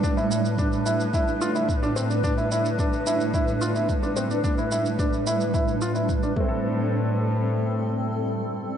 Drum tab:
SH |xxxxxxxxxxxxxxxx|xxxxxxxxxxxxxxxx|xxxxxxxxxxxxxx--|----------------|
BD |o---o---o---o---|o---o---o---o---|o---o---o---o-o-|----------------|